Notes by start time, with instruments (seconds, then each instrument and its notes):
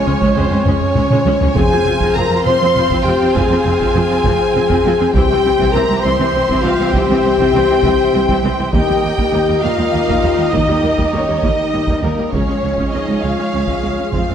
Already playing: trombone section F3 G#3, string section G#3 F4 C#5 G#5, french horn section C#4, violin section C#5, trumpet section C#5
0.06 cello section C#2, double bass section C#2, viola section G#3 C#4
0.20 cello section C#2, viola section G#3 C#4, taiko
0.35 cello section C#2, double bass section C#2, viola section G#3 C#4, french horn section C4, violin section C5, taiko low-mid
0.50 cello section C#2, viola section G#3 C#4, taiko low-mid
0.65 cello section C#2, double bass section C#2, viola section G#3 C#4, french horn section C#4, violin section C#5, taiko low-mid
0.80 taiko low-mid
0.95 cello section C#2, double bass section C#2, viola section G#3 C#4, taiko mid
1.09 cello section C#2, viola section G#3 C#4, taiko mid
1.25 cello section C#2, double bass section C#2, viola section G#3 C#4, taiko high
1.40 cello section C#2, viola section G#3 C#4, taiko low
1.55 double bass section F1, cello section F2, timpani F2, viola section F3 C4, trombone section F3 C4, string section C4 F4 C5 F5, french horn section G#4, trumpet section C5, violin section G#5, taiko
1.70 cello section F2, viola section F3 C4
1.85 double bass section F1, cello section F2, viola section F3 C4
2.00 cello section F2, viola section F3 C4, taiko
2.15 double bass section F1, cello section F2, viola section F3 C4, french horn section A#4, violin section A#5
2.29 cello section F2, viola section F3 C4
2.44 double bass section F1, cello section F2, viola section F3 C4, french horn section C5, violin section C6
2.60 cello section F2, viola section F3 C4
2.75 double bass section F1, cello section F2, viola section F3 C4
2.89 cello section F2, viola section F3 C4, taiko
3.03 double bass section F1, cello section F2, french horn section G4, violin section G5
3.08 viola section F3 C4
3.19 cello section F2, viola section F3 C4
3.33 double bass section F1, cello section F2, viola section F3 C4, french horn section G#4, violin section G#5, taiko
3.49 cello section F2, viola section F3 C4
3.65 double bass section F1, cello section F2, viola section F3 C4
3.80 cello section F2, viola section F3 C4, taiko
3.95 double bass section F1, cello section F2, viola section F3 C4
4.09 cello section F2, viola section F3 C4
4.24 double bass section F1, cello section F2, viola section F3 C4, taiko
4.54 double bass section F1, cello section F2, viola section F3 C4
4.69 cello section F2, viola section F3 C4, taiko
4.84 double bass section F1, cello section F2, viola section F3 C4
4.99 cello section F2, viola section F3 C4
5.14 cello section C2, double bass section C2, viola section E3 C4, string section C4 G4 C5 E5, french horn section G4, trumpet section C5, violin section G5, taiko
5.28 cello section C2, viola section E3 C4
5.43 cello section C2, double bass section C2, viola section E3 C4
5.58 cello section C2, viola section E3 C4, taiko
5.72 double bass section C2, cello section C2, viola section E3 C4, french horn section A#4, violin section A#5
5.89 cello section C2, viola section E3 C4
6.02 double bass section C2, cello section C2, trombone section E3, viola section E3 C4, french horn section C5, violin section C6
6.19 cello section C2, viola section E3 C4
6.33 double bass section C2, cello section C2, viola section E3 C4
6.48 cello section C2, viola section E3 C4, taiko
6.63 cello section C2, double bass section C2, viola section E3 C4, french horn section F4, violin section F5
6.79 cello section C2, viola section E3 C4
6.93 double bass section C2, cello section C2, viola section E3 C4, french horn section G4, violin section G5, taiko
7.09 cello section C2, viola section E3 C4
7.23 double bass section C2, cello section C2, viola section E3 C4
7.38 cello section C2, viola section E3 C4, taiko
7.53 double bass section C2, cello section C2, viola section E3 C4
7.69 cello section C2, viola section E3 C4
7.83 double bass section C2, cello section C2, viola section E3 C4, taiko
8.13 double bass section C2, cello section C2, viola section E3 C4
8.28 cello section C2, viola section E3 C4, taiko
8.43 cello section C2, double bass section C2, viola section E3 C4
8.58 cello section C2, viola section E3 C4
8.73 double bass section D#2, cello section D#2, trombone section D#3 A#3, viola section G3 A#3, string section D#4 G4 A#4 D#5, french horn section G4, trumpet section D#5, violin section G5, taiko
8.88 cello section D#2, viola section G3 A#3
9.03 cello section D#2, double bass section D#2, viola section G3 A#3
9.17 cello section D#2, viola section G3 A#3, taiko
9.33 cello section D#2, double bass section D#2, viola section G3 A#3
9.48 cello section D#2, viola section G3 A#3
9.62 cello section D#2, double bass section D#2, viola section G3 A#3, french horn section F4, violin section F5
9.78 cello section D#2, viola section G3 A#3
9.93 cello section D#2, double bass section D#2, viola section G3 A#3
10.08 cello section D#2, viola section G3 A#3, taiko
10.23 cello section D#2, double bass section D#2, viola section G3 A#3
10.37 cello section D#2, viola section G3 A#3
10.51 cello section D#2, double bass section D#2, viola section G3 A#3, french horn section D#4, violin section D#5, taiko
10.68 cello section D#2, viola section G3 A#3
10.82 double bass section D#2, cello section D#2, viola section G3 A#3
10.98 cello section D#2, viola section G3 A#3, taiko
11.12 cello section D#2, double bass section D#2, viola section G3 A#3, french horn section C#4, violin section C#5
11.27 cello section D#2, viola section G3 A#3
11.42 double bass section D#2, cello section D#2, viola section G3 A#3, french horn section D#4, violin section D#5, taiko
11.73 cello section D#2, double bass section D#2, viola section G3 A#3
11.87 cello section D#2, viola section G3 A#3, taiko
12.02 cello section D#2, double bass section D#2, viola section G3 A#3, french horn section A#3, violin section A#4
12.17 cello section D#2, viola section G3 A#3
12.32 cello section C#2, double bass section C#2, trombone section F3 G#3, viola section G#3 C#4, string section C#4 G#4 C#5 F5, french horn section C#4, violin section C#5, trumpet section C#5, taiko
12.48 cello section C#2, viola section G#3 C#4
12.62 cello section C#2, double bass section C#2, viola section G#3 C#4
12.77 cello section C#2, viola section G#3 C#4, taiko
12.91 cello section C#2, double bass section C#2, viola section G#3 C#4, french horn section D#4, violin section D#5
13.08 cello section C#2, viola section G#3 C#4
13.22 cello section C#2, double bass section C#2, viola section G#3 C#4, french horn section F4, violin section F5
13.38 cello section C#2, viola section G#3 C#4
13.53 cello section C#2, double bass section C#2, viola section G#3 C#4
13.67 cello section C#2, viola section G#3 C#4, taiko
13.82 cello section C#2, double bass section C#2, viola section G#3 C#4
13.98 cello section C#2, viola section G#3 C#4
14.12 double bass section F1, cello section F2, viola section G#3 C4, string section F4 C5, french horn section F4, trumpet section C5, violin section F5, taiko
14.28 cello section F2, viola section G#3 C4